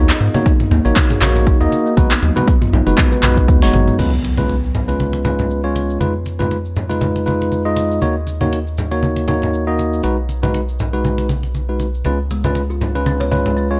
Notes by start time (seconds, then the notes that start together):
Already playing: D#2
0.10 D#5, clap, shaker
0.20 G#2, muted conga, shaker
0.34 A#3 D#4 F#4 C#5, high conga, low conga, shaker
0.46 D#4, kick, muted conga, shaker
0.60 mid tom, shaker
0.71 D#2 A#3, low conga, shaker
0.85 A#1 A#3 D#4 F#4 C#5, muted conga, shaker
0.96 kick, clap, high conga, shaker
1.10 G#4, mid tom, muted conga, shaker
1.21 A#1 A#3 D#4 F#4 C#5, clap, high conga, low conga, shaker
1.36 muted conga, low conga, shaker
1.47 D#4, kick, shaker
1.61 D#2 A#3 D#4 F#4 D#5, shaker
1.72 muted conga, shaker
1.86 A#3, shaker
1.97 B1 G#3 B3 D#4 F#4 B4, kick, muted conga, high conga, shaker
2.11 clap, shaker
2.22 D#2 F#3, muted conga, shaker
2.36 G#3 B3 D#4 F#4 B4, high conga, low conga, shaker
2.48 kick, muted conga, shaker
2.62 F4, mid tom, shaker
2.73 B1 D#4, low conga, shaker
2.87 F#1 G#3 D#4 F#4 B4, muted conga, shaker
2.98 B3, kick, clap, high conga, low conga, shaker
3.12 B4, muted conga, shaker
3.23 B1 G#3 D#4 F#4 B4, clap, mid tom, high conga, shaker
3.37 F#3, kick, muted conga, shaker
3.48 D#2 B3, kick, high conga, shaker
3.62 F#1 G#3 D#4 F#4 C#5, snare, shaker
3.73 G#1 F#3, mid tom, muted conga, shaker
3.87 B3, mid tom, shaker
3.99 C#2 G#3 C#4 F4 B4, crash, impact, muted conga, high conga, shaker
4.24 muted conga, shaker
4.37 G#3 C#4 F4 B4, high conga, low conga, shaker
4.49 muted conga, shaker
4.63 shaker
4.74 low conga, shaker
4.88 G#3 C#4 F4 B4, muted conga, shaker
5.00 high conga, shaker
5.13 muted conga, shaker
5.25 G#3 C#4 F4 B4, high conga, low conga, shaker
5.39 muted conga, low conga, shaker
5.50 shaker
5.64 G#3 C#4 F4 C#5
5.76 muted conga, shaker
5.90 shaker
6.00 F2 G#3 D#4 F4 B4, muted conga, high conga, shaker
6.26 muted conga, shaker
6.39 G#3 D#4 F4 B4, high conga, low conga, shaker
6.51 muted conga, shaker
6.65 shaker
6.76 low conga, shaker
6.89 G#3 D#4 F4 B4, muted conga, shaker
7.01 high conga, low conga, shaker
7.16 muted conga, shaker
7.26 G#3 D#4 F4 B4, high conga, shaker
7.41 muted conga, shaker
7.52 high conga, shaker
7.65 G#3 D#4 F4 D#5
7.76 muted conga, shaker
7.91 shaker
8.02 D#2 A#3 D#4 F#4 C#5, muted conga, high conga, shaker
8.27 muted conga, shaker
8.41 A#3 D#4 F#4 C#5, high conga, low conga, shaker
8.53 muted conga, shaker
8.67 shaker
8.78 low conga, shaker
8.91 A#3 D#4 F#4 C#5, muted conga, shaker
9.03 high conga, shaker
9.16 muted conga, shaker
9.28 A#3 D#4 F#4 C#5, high conga, low conga, shaker
9.42 muted conga, low conga, shaker
9.54 shaker
9.67 A#3 D#4 F#4 D#5
9.79 muted conga, shaker
9.93 shaker
10.03 B1 G#3 D#4 F#4 B4, muted conga, high conga, shaker
10.29 muted conga, shaker
10.43 G#3 D#4 F#4 B4, high conga, low conga, shaker
10.54 muted conga, shaker
10.69 shaker
10.80 low conga, shaker
10.93 G#3 D#4 F#4 B4, muted conga, shaker
11.04 high conga, low conga, shaker
11.18 muted conga, shaker
11.29 high conga, shaker
11.43 muted conga, shaker
11.55 high conga, shaker
11.69 G#3 D#4 F#4 B4
11.80 muted conga, shaker
11.94 shaker
12.05 C#2 G#3 C#4 F4 B4, muted conga, high conga, shaker
12.31 G#3, muted conga, shaker
12.44 G#3 C#4 F4 B4, high conga, low conga, shaker
12.55 muted conga, shaker
12.70 F4, shaker
12.81 F4, low conga, shaker
12.95 G#3 C#4 F4 B4, muted conga, shaker
13.06 C#4, high conga, shaker
13.20 C#5, muted conga, shaker
13.31 G#3 C#4 F4 B4, high conga, low conga, shaker
13.45 G#3, muted conga, low conga, shaker
13.57 C#4, shaker
13.71 G#3 C#4 F4 C#5